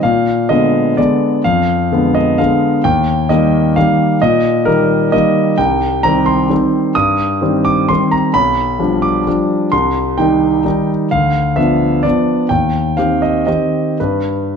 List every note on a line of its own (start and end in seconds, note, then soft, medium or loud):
0.03 0.49 A#2 medium
0.03 0.49 F5 medium
0.49 0.94 D3 soft
0.49 0.94 G#3 soft
0.49 0.94 B3 soft
0.49 0.97 D#5 medium
0.97 1.41 D3 soft
0.97 1.41 G#3 soft
0.97 1.41 B3 soft
0.97 1.44 D5 medium
1.44 1.90 F2 medium
1.44 2.15 F5 medium
1.92 2.35 D3 soft
1.92 2.35 G#3 soft
1.92 2.35 B3 soft
2.15 2.38 D#5 medium
2.38 2.80 D3 soft
2.38 2.81 G#3 soft
2.38 2.81 B3 soft
2.38 2.84 F5 medium
2.84 3.28 D#2 medium
2.84 3.29 G5 medium
3.29 3.72 D#3 soft
3.29 3.72 G3 soft
3.29 3.72 A#3 soft
3.29 3.76 D#5 medium
3.76 4.19 D#3 soft
3.76 4.19 G3 soft
3.76 4.19 A#3 soft
3.76 4.22 F5 medium
4.22 4.65 A#2 medium
4.22 4.67 D#5 medium
4.65 5.09 D#3 soft
4.65 5.09 G3 soft
4.65 5.09 A#3 soft
4.65 5.12 A#4 medium
5.12 5.55 D#3 soft
5.12 5.55 G3 soft
5.12 5.55 A#3 soft
5.12 5.58 D#5 medium
5.58 6.03 C2 medium
5.58 6.04 G5 medium
6.03 6.47 D#3 soft
6.03 6.47 G3 soft
6.03 6.47 C4 soft
6.03 6.27 A#5 medium
6.26 6.96 C6 medium
6.49 6.92 D#3 soft
6.49 6.93 G3 soft
6.49 6.93 C4 soft
6.95 7.40 G2 medium
6.95 7.65 D#6 medium
7.41 7.85 D#3 soft
7.41 7.85 G3 soft
7.41 7.86 C4 soft
7.65 7.89 D6 medium
7.89 8.31 D#3 soft
7.89 8.31 G3 soft
7.89 8.31 C4 soft
7.89 8.12 C6 medium
8.11 8.34 A#5 medium
8.34 8.78 B1 medium
8.34 9.03 B5 medium
8.79 9.22 F3 soft
8.79 9.23 G3 soft
8.79 9.23 D4 soft
9.02 9.72 D6 medium
9.27 9.69 F3 soft
9.27 9.69 G3 soft
9.27 9.69 D4 soft
9.72 10.17 C2 medium
9.72 10.17 C6 medium
10.18 10.62 D#3 soft
10.18 10.62 G3 soft
10.18 10.62 D#4 soft
10.18 10.89 G5 medium
10.65 11.08 D#3 soft
10.65 11.08 G3 soft
10.65 11.08 D#4 soft
11.11 11.56 D2 soft
11.11 11.57 F5 medium
11.56 12.00 F3 soft
11.56 12.00 B3 soft
11.56 12.00 D4 soft
11.56 12.03 E5 medium
12.03 12.46 F3 soft
12.03 12.46 B3 soft
12.03 12.46 D4 soft
12.03 12.50 D5 medium
12.49 12.96 D#2 soft
12.49 12.97 G5 medium
12.97 13.44 D#3 soft
12.97 13.44 C4 soft
12.97 13.44 G4 soft
12.97 13.22 F5 medium
13.22 13.45 D#5 medium
13.47 13.97 D#3 soft
13.47 13.97 C4 soft
13.47 13.97 G4 soft
13.47 14.00 D#5 medium
14.00 14.53 G2 soft
14.00 14.56 B4 medium